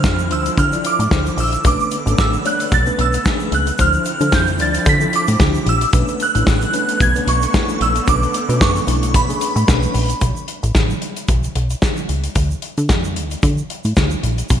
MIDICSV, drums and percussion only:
0, 0, Header, 1, 2, 480
1, 0, Start_track
1, 0, Tempo, 535714
1, 1475, Time_signature, 4, 2, 24, 8
1, 13082, End_track
2, 0, Start_track
2, 0, Title_t, "Drums"
2, 33, Note_on_c, 9, 82, 71
2, 35, Note_on_c, 9, 36, 120
2, 35, Note_on_c, 9, 38, 112
2, 122, Note_off_c, 9, 82, 0
2, 125, Note_off_c, 9, 36, 0
2, 125, Note_off_c, 9, 38, 0
2, 170, Note_on_c, 9, 82, 57
2, 259, Note_off_c, 9, 82, 0
2, 277, Note_on_c, 9, 42, 71
2, 366, Note_off_c, 9, 42, 0
2, 409, Note_on_c, 9, 82, 53
2, 410, Note_on_c, 9, 42, 54
2, 498, Note_off_c, 9, 82, 0
2, 500, Note_off_c, 9, 42, 0
2, 515, Note_on_c, 9, 36, 107
2, 517, Note_on_c, 9, 42, 89
2, 518, Note_on_c, 9, 82, 62
2, 605, Note_off_c, 9, 36, 0
2, 607, Note_off_c, 9, 42, 0
2, 607, Note_off_c, 9, 82, 0
2, 650, Note_on_c, 9, 82, 57
2, 657, Note_on_c, 9, 42, 35
2, 739, Note_off_c, 9, 82, 0
2, 746, Note_off_c, 9, 42, 0
2, 754, Note_on_c, 9, 82, 65
2, 758, Note_on_c, 9, 42, 80
2, 844, Note_off_c, 9, 82, 0
2, 848, Note_off_c, 9, 42, 0
2, 894, Note_on_c, 9, 82, 55
2, 895, Note_on_c, 9, 42, 47
2, 983, Note_off_c, 9, 82, 0
2, 984, Note_off_c, 9, 42, 0
2, 997, Note_on_c, 9, 38, 120
2, 998, Note_on_c, 9, 36, 127
2, 1000, Note_on_c, 9, 82, 69
2, 1087, Note_off_c, 9, 36, 0
2, 1087, Note_off_c, 9, 38, 0
2, 1090, Note_off_c, 9, 82, 0
2, 1132, Note_on_c, 9, 42, 31
2, 1132, Note_on_c, 9, 82, 55
2, 1221, Note_off_c, 9, 82, 0
2, 1222, Note_off_c, 9, 42, 0
2, 1234, Note_on_c, 9, 46, 70
2, 1239, Note_on_c, 9, 82, 54
2, 1323, Note_off_c, 9, 46, 0
2, 1328, Note_off_c, 9, 82, 0
2, 1366, Note_on_c, 9, 42, 58
2, 1375, Note_on_c, 9, 82, 55
2, 1456, Note_off_c, 9, 42, 0
2, 1464, Note_off_c, 9, 82, 0
2, 1473, Note_on_c, 9, 82, 81
2, 1476, Note_on_c, 9, 42, 101
2, 1477, Note_on_c, 9, 36, 108
2, 1563, Note_off_c, 9, 82, 0
2, 1566, Note_off_c, 9, 36, 0
2, 1566, Note_off_c, 9, 42, 0
2, 1611, Note_on_c, 9, 82, 50
2, 1701, Note_off_c, 9, 82, 0
2, 1712, Note_on_c, 9, 82, 61
2, 1715, Note_on_c, 9, 42, 57
2, 1801, Note_off_c, 9, 82, 0
2, 1805, Note_off_c, 9, 42, 0
2, 1854, Note_on_c, 9, 82, 64
2, 1855, Note_on_c, 9, 42, 45
2, 1944, Note_off_c, 9, 82, 0
2, 1945, Note_off_c, 9, 42, 0
2, 1955, Note_on_c, 9, 82, 67
2, 1957, Note_on_c, 9, 36, 127
2, 1958, Note_on_c, 9, 38, 109
2, 2045, Note_off_c, 9, 82, 0
2, 2047, Note_off_c, 9, 36, 0
2, 2047, Note_off_c, 9, 38, 0
2, 2091, Note_on_c, 9, 82, 51
2, 2180, Note_off_c, 9, 82, 0
2, 2195, Note_on_c, 9, 82, 70
2, 2200, Note_on_c, 9, 42, 67
2, 2285, Note_off_c, 9, 82, 0
2, 2289, Note_off_c, 9, 42, 0
2, 2328, Note_on_c, 9, 82, 54
2, 2331, Note_on_c, 9, 42, 59
2, 2418, Note_off_c, 9, 82, 0
2, 2420, Note_off_c, 9, 42, 0
2, 2432, Note_on_c, 9, 82, 67
2, 2436, Note_on_c, 9, 36, 115
2, 2437, Note_on_c, 9, 42, 85
2, 2522, Note_off_c, 9, 82, 0
2, 2526, Note_off_c, 9, 36, 0
2, 2527, Note_off_c, 9, 42, 0
2, 2565, Note_on_c, 9, 82, 51
2, 2654, Note_off_c, 9, 82, 0
2, 2677, Note_on_c, 9, 42, 70
2, 2766, Note_off_c, 9, 42, 0
2, 2804, Note_on_c, 9, 82, 53
2, 2813, Note_on_c, 9, 42, 51
2, 2893, Note_off_c, 9, 82, 0
2, 2903, Note_off_c, 9, 42, 0
2, 2915, Note_on_c, 9, 82, 72
2, 2918, Note_on_c, 9, 36, 126
2, 2918, Note_on_c, 9, 38, 118
2, 3005, Note_off_c, 9, 82, 0
2, 3008, Note_off_c, 9, 36, 0
2, 3008, Note_off_c, 9, 38, 0
2, 3044, Note_on_c, 9, 82, 53
2, 3133, Note_off_c, 9, 82, 0
2, 3155, Note_on_c, 9, 42, 73
2, 3245, Note_off_c, 9, 42, 0
2, 3287, Note_on_c, 9, 42, 52
2, 3287, Note_on_c, 9, 82, 49
2, 3376, Note_off_c, 9, 42, 0
2, 3376, Note_off_c, 9, 82, 0
2, 3389, Note_on_c, 9, 82, 79
2, 3396, Note_on_c, 9, 36, 105
2, 3397, Note_on_c, 9, 42, 103
2, 3478, Note_off_c, 9, 82, 0
2, 3486, Note_off_c, 9, 36, 0
2, 3486, Note_off_c, 9, 42, 0
2, 3523, Note_on_c, 9, 82, 45
2, 3612, Note_off_c, 9, 82, 0
2, 3627, Note_on_c, 9, 82, 62
2, 3635, Note_on_c, 9, 42, 64
2, 3717, Note_off_c, 9, 82, 0
2, 3725, Note_off_c, 9, 42, 0
2, 3768, Note_on_c, 9, 82, 65
2, 3773, Note_on_c, 9, 42, 44
2, 3858, Note_off_c, 9, 82, 0
2, 3862, Note_off_c, 9, 42, 0
2, 3871, Note_on_c, 9, 82, 65
2, 3873, Note_on_c, 9, 38, 110
2, 3876, Note_on_c, 9, 36, 127
2, 3961, Note_off_c, 9, 82, 0
2, 3963, Note_off_c, 9, 38, 0
2, 3966, Note_off_c, 9, 36, 0
2, 4006, Note_on_c, 9, 82, 50
2, 4014, Note_on_c, 9, 42, 36
2, 4096, Note_off_c, 9, 82, 0
2, 4103, Note_off_c, 9, 42, 0
2, 4110, Note_on_c, 9, 82, 64
2, 4119, Note_on_c, 9, 42, 71
2, 4199, Note_off_c, 9, 82, 0
2, 4209, Note_off_c, 9, 42, 0
2, 4246, Note_on_c, 9, 82, 51
2, 4252, Note_on_c, 9, 42, 56
2, 4335, Note_off_c, 9, 82, 0
2, 4341, Note_off_c, 9, 42, 0
2, 4351, Note_on_c, 9, 82, 64
2, 4357, Note_on_c, 9, 36, 127
2, 4358, Note_on_c, 9, 42, 94
2, 4441, Note_off_c, 9, 82, 0
2, 4446, Note_off_c, 9, 36, 0
2, 4447, Note_off_c, 9, 42, 0
2, 4485, Note_on_c, 9, 82, 55
2, 4575, Note_off_c, 9, 82, 0
2, 4596, Note_on_c, 9, 42, 74
2, 4686, Note_off_c, 9, 42, 0
2, 4724, Note_on_c, 9, 82, 60
2, 4731, Note_on_c, 9, 42, 54
2, 4813, Note_off_c, 9, 82, 0
2, 4821, Note_off_c, 9, 42, 0
2, 4835, Note_on_c, 9, 38, 119
2, 4837, Note_on_c, 9, 82, 62
2, 4838, Note_on_c, 9, 36, 121
2, 4925, Note_off_c, 9, 38, 0
2, 4927, Note_off_c, 9, 36, 0
2, 4927, Note_off_c, 9, 82, 0
2, 4970, Note_on_c, 9, 82, 52
2, 4973, Note_on_c, 9, 42, 33
2, 5059, Note_off_c, 9, 82, 0
2, 5062, Note_off_c, 9, 42, 0
2, 5076, Note_on_c, 9, 42, 67
2, 5166, Note_off_c, 9, 42, 0
2, 5207, Note_on_c, 9, 42, 51
2, 5211, Note_on_c, 9, 82, 49
2, 5297, Note_off_c, 9, 42, 0
2, 5301, Note_off_c, 9, 82, 0
2, 5313, Note_on_c, 9, 42, 102
2, 5313, Note_on_c, 9, 82, 76
2, 5316, Note_on_c, 9, 36, 111
2, 5402, Note_off_c, 9, 42, 0
2, 5403, Note_off_c, 9, 82, 0
2, 5405, Note_off_c, 9, 36, 0
2, 5448, Note_on_c, 9, 82, 47
2, 5455, Note_on_c, 9, 42, 36
2, 5538, Note_off_c, 9, 82, 0
2, 5544, Note_off_c, 9, 42, 0
2, 5553, Note_on_c, 9, 82, 58
2, 5554, Note_on_c, 9, 42, 60
2, 5642, Note_off_c, 9, 82, 0
2, 5643, Note_off_c, 9, 42, 0
2, 5690, Note_on_c, 9, 42, 45
2, 5696, Note_on_c, 9, 82, 55
2, 5779, Note_off_c, 9, 42, 0
2, 5786, Note_off_c, 9, 82, 0
2, 5794, Note_on_c, 9, 38, 117
2, 5796, Note_on_c, 9, 36, 121
2, 5798, Note_on_c, 9, 82, 68
2, 5884, Note_off_c, 9, 38, 0
2, 5885, Note_off_c, 9, 36, 0
2, 5888, Note_off_c, 9, 82, 0
2, 5927, Note_on_c, 9, 82, 55
2, 5936, Note_on_c, 9, 42, 37
2, 6017, Note_off_c, 9, 82, 0
2, 6026, Note_off_c, 9, 42, 0
2, 6034, Note_on_c, 9, 82, 58
2, 6035, Note_on_c, 9, 42, 65
2, 6123, Note_off_c, 9, 82, 0
2, 6125, Note_off_c, 9, 42, 0
2, 6170, Note_on_c, 9, 42, 55
2, 6173, Note_on_c, 9, 82, 52
2, 6260, Note_off_c, 9, 42, 0
2, 6262, Note_off_c, 9, 82, 0
2, 6274, Note_on_c, 9, 82, 64
2, 6276, Note_on_c, 9, 36, 119
2, 6278, Note_on_c, 9, 42, 88
2, 6363, Note_off_c, 9, 82, 0
2, 6366, Note_off_c, 9, 36, 0
2, 6368, Note_off_c, 9, 42, 0
2, 6407, Note_on_c, 9, 82, 49
2, 6417, Note_on_c, 9, 42, 36
2, 6496, Note_off_c, 9, 82, 0
2, 6507, Note_off_c, 9, 42, 0
2, 6519, Note_on_c, 9, 42, 78
2, 6609, Note_off_c, 9, 42, 0
2, 6648, Note_on_c, 9, 82, 59
2, 6657, Note_on_c, 9, 42, 49
2, 6737, Note_off_c, 9, 82, 0
2, 6746, Note_off_c, 9, 42, 0
2, 6754, Note_on_c, 9, 82, 68
2, 6757, Note_on_c, 9, 38, 117
2, 6758, Note_on_c, 9, 36, 117
2, 6844, Note_off_c, 9, 82, 0
2, 6847, Note_off_c, 9, 38, 0
2, 6848, Note_off_c, 9, 36, 0
2, 6885, Note_on_c, 9, 82, 54
2, 6895, Note_on_c, 9, 42, 35
2, 6975, Note_off_c, 9, 82, 0
2, 6984, Note_off_c, 9, 42, 0
2, 6997, Note_on_c, 9, 42, 73
2, 7087, Note_off_c, 9, 42, 0
2, 7128, Note_on_c, 9, 42, 54
2, 7129, Note_on_c, 9, 82, 56
2, 7218, Note_off_c, 9, 42, 0
2, 7219, Note_off_c, 9, 82, 0
2, 7234, Note_on_c, 9, 82, 69
2, 7236, Note_on_c, 9, 36, 114
2, 7238, Note_on_c, 9, 42, 103
2, 7324, Note_off_c, 9, 82, 0
2, 7326, Note_off_c, 9, 36, 0
2, 7327, Note_off_c, 9, 42, 0
2, 7373, Note_on_c, 9, 82, 49
2, 7375, Note_on_c, 9, 42, 35
2, 7462, Note_off_c, 9, 82, 0
2, 7465, Note_off_c, 9, 42, 0
2, 7472, Note_on_c, 9, 82, 57
2, 7475, Note_on_c, 9, 42, 67
2, 7561, Note_off_c, 9, 82, 0
2, 7565, Note_off_c, 9, 42, 0
2, 7613, Note_on_c, 9, 42, 47
2, 7613, Note_on_c, 9, 82, 57
2, 7702, Note_off_c, 9, 42, 0
2, 7703, Note_off_c, 9, 82, 0
2, 7715, Note_on_c, 9, 36, 126
2, 7715, Note_on_c, 9, 82, 63
2, 7716, Note_on_c, 9, 38, 113
2, 7804, Note_off_c, 9, 36, 0
2, 7805, Note_off_c, 9, 82, 0
2, 7806, Note_off_c, 9, 38, 0
2, 7850, Note_on_c, 9, 82, 53
2, 7856, Note_on_c, 9, 42, 41
2, 7939, Note_off_c, 9, 82, 0
2, 7946, Note_off_c, 9, 42, 0
2, 7953, Note_on_c, 9, 82, 62
2, 7957, Note_on_c, 9, 42, 74
2, 8043, Note_off_c, 9, 82, 0
2, 8046, Note_off_c, 9, 42, 0
2, 8089, Note_on_c, 9, 42, 49
2, 8092, Note_on_c, 9, 82, 54
2, 8179, Note_off_c, 9, 42, 0
2, 8181, Note_off_c, 9, 82, 0
2, 8192, Note_on_c, 9, 42, 101
2, 8193, Note_on_c, 9, 36, 114
2, 8196, Note_on_c, 9, 82, 64
2, 8282, Note_off_c, 9, 42, 0
2, 8283, Note_off_c, 9, 36, 0
2, 8285, Note_off_c, 9, 82, 0
2, 8331, Note_on_c, 9, 82, 50
2, 8334, Note_on_c, 9, 42, 41
2, 8420, Note_off_c, 9, 82, 0
2, 8423, Note_off_c, 9, 42, 0
2, 8433, Note_on_c, 9, 42, 79
2, 8433, Note_on_c, 9, 82, 71
2, 8522, Note_off_c, 9, 82, 0
2, 8523, Note_off_c, 9, 42, 0
2, 8567, Note_on_c, 9, 82, 60
2, 8570, Note_on_c, 9, 42, 48
2, 8657, Note_off_c, 9, 82, 0
2, 8660, Note_off_c, 9, 42, 0
2, 8674, Note_on_c, 9, 38, 112
2, 8676, Note_on_c, 9, 36, 127
2, 8676, Note_on_c, 9, 82, 72
2, 8764, Note_off_c, 9, 38, 0
2, 8765, Note_off_c, 9, 36, 0
2, 8766, Note_off_c, 9, 82, 0
2, 8803, Note_on_c, 9, 82, 52
2, 8809, Note_on_c, 9, 42, 34
2, 8892, Note_off_c, 9, 82, 0
2, 8899, Note_off_c, 9, 42, 0
2, 8910, Note_on_c, 9, 46, 79
2, 8911, Note_on_c, 9, 82, 54
2, 9000, Note_off_c, 9, 46, 0
2, 9001, Note_off_c, 9, 82, 0
2, 9046, Note_on_c, 9, 42, 54
2, 9048, Note_on_c, 9, 82, 55
2, 9135, Note_off_c, 9, 42, 0
2, 9138, Note_off_c, 9, 82, 0
2, 9150, Note_on_c, 9, 82, 63
2, 9151, Note_on_c, 9, 42, 92
2, 9153, Note_on_c, 9, 36, 93
2, 9239, Note_off_c, 9, 82, 0
2, 9241, Note_off_c, 9, 42, 0
2, 9242, Note_off_c, 9, 36, 0
2, 9288, Note_on_c, 9, 82, 43
2, 9377, Note_off_c, 9, 82, 0
2, 9389, Note_on_c, 9, 42, 62
2, 9479, Note_off_c, 9, 42, 0
2, 9529, Note_on_c, 9, 42, 43
2, 9530, Note_on_c, 9, 82, 56
2, 9618, Note_off_c, 9, 42, 0
2, 9619, Note_off_c, 9, 82, 0
2, 9629, Note_on_c, 9, 38, 101
2, 9632, Note_on_c, 9, 36, 117
2, 9633, Note_on_c, 9, 82, 62
2, 9719, Note_off_c, 9, 38, 0
2, 9722, Note_off_c, 9, 36, 0
2, 9723, Note_off_c, 9, 82, 0
2, 9766, Note_on_c, 9, 82, 49
2, 9855, Note_off_c, 9, 82, 0
2, 9872, Note_on_c, 9, 42, 61
2, 9961, Note_off_c, 9, 42, 0
2, 10003, Note_on_c, 9, 42, 49
2, 10008, Note_on_c, 9, 82, 48
2, 10093, Note_off_c, 9, 42, 0
2, 10097, Note_off_c, 9, 82, 0
2, 10109, Note_on_c, 9, 82, 61
2, 10110, Note_on_c, 9, 42, 84
2, 10112, Note_on_c, 9, 36, 102
2, 10199, Note_off_c, 9, 82, 0
2, 10200, Note_off_c, 9, 42, 0
2, 10202, Note_off_c, 9, 36, 0
2, 10245, Note_on_c, 9, 82, 49
2, 10252, Note_on_c, 9, 42, 33
2, 10335, Note_off_c, 9, 82, 0
2, 10341, Note_off_c, 9, 42, 0
2, 10353, Note_on_c, 9, 42, 71
2, 10443, Note_off_c, 9, 42, 0
2, 10485, Note_on_c, 9, 82, 54
2, 10487, Note_on_c, 9, 42, 40
2, 10574, Note_off_c, 9, 82, 0
2, 10576, Note_off_c, 9, 42, 0
2, 10591, Note_on_c, 9, 38, 102
2, 10594, Note_on_c, 9, 36, 116
2, 10594, Note_on_c, 9, 82, 62
2, 10680, Note_off_c, 9, 38, 0
2, 10684, Note_off_c, 9, 36, 0
2, 10684, Note_off_c, 9, 82, 0
2, 10723, Note_on_c, 9, 82, 52
2, 10812, Note_off_c, 9, 82, 0
2, 10832, Note_on_c, 9, 42, 62
2, 10922, Note_off_c, 9, 42, 0
2, 10964, Note_on_c, 9, 42, 55
2, 10970, Note_on_c, 9, 82, 50
2, 11053, Note_off_c, 9, 42, 0
2, 11060, Note_off_c, 9, 82, 0
2, 11070, Note_on_c, 9, 42, 97
2, 11071, Note_on_c, 9, 82, 71
2, 11073, Note_on_c, 9, 36, 94
2, 11159, Note_off_c, 9, 42, 0
2, 11161, Note_off_c, 9, 82, 0
2, 11162, Note_off_c, 9, 36, 0
2, 11208, Note_on_c, 9, 82, 47
2, 11298, Note_off_c, 9, 82, 0
2, 11309, Note_on_c, 9, 42, 59
2, 11399, Note_off_c, 9, 42, 0
2, 11447, Note_on_c, 9, 42, 41
2, 11452, Note_on_c, 9, 82, 51
2, 11536, Note_off_c, 9, 42, 0
2, 11541, Note_off_c, 9, 82, 0
2, 11550, Note_on_c, 9, 38, 103
2, 11552, Note_on_c, 9, 82, 56
2, 11553, Note_on_c, 9, 36, 111
2, 11640, Note_off_c, 9, 38, 0
2, 11642, Note_off_c, 9, 82, 0
2, 11643, Note_off_c, 9, 36, 0
2, 11686, Note_on_c, 9, 82, 48
2, 11776, Note_off_c, 9, 82, 0
2, 11794, Note_on_c, 9, 42, 66
2, 11884, Note_off_c, 9, 42, 0
2, 11925, Note_on_c, 9, 82, 52
2, 11928, Note_on_c, 9, 42, 53
2, 12015, Note_off_c, 9, 82, 0
2, 12018, Note_off_c, 9, 42, 0
2, 12029, Note_on_c, 9, 82, 59
2, 12034, Note_on_c, 9, 36, 105
2, 12034, Note_on_c, 9, 42, 86
2, 12118, Note_off_c, 9, 82, 0
2, 12123, Note_off_c, 9, 36, 0
2, 12124, Note_off_c, 9, 42, 0
2, 12163, Note_on_c, 9, 82, 46
2, 12253, Note_off_c, 9, 82, 0
2, 12276, Note_on_c, 9, 42, 63
2, 12365, Note_off_c, 9, 42, 0
2, 12400, Note_on_c, 9, 82, 45
2, 12411, Note_on_c, 9, 42, 47
2, 12490, Note_off_c, 9, 82, 0
2, 12501, Note_off_c, 9, 42, 0
2, 12511, Note_on_c, 9, 82, 65
2, 12514, Note_on_c, 9, 38, 108
2, 12516, Note_on_c, 9, 36, 118
2, 12600, Note_off_c, 9, 82, 0
2, 12604, Note_off_c, 9, 38, 0
2, 12606, Note_off_c, 9, 36, 0
2, 12640, Note_on_c, 9, 82, 47
2, 12729, Note_off_c, 9, 82, 0
2, 12754, Note_on_c, 9, 42, 65
2, 12843, Note_off_c, 9, 42, 0
2, 12886, Note_on_c, 9, 42, 49
2, 12887, Note_on_c, 9, 82, 52
2, 12976, Note_off_c, 9, 42, 0
2, 12976, Note_off_c, 9, 82, 0
2, 12984, Note_on_c, 9, 82, 73
2, 12995, Note_on_c, 9, 36, 102
2, 12995, Note_on_c, 9, 42, 97
2, 13074, Note_off_c, 9, 82, 0
2, 13082, Note_off_c, 9, 36, 0
2, 13082, Note_off_c, 9, 42, 0
2, 13082, End_track
0, 0, End_of_file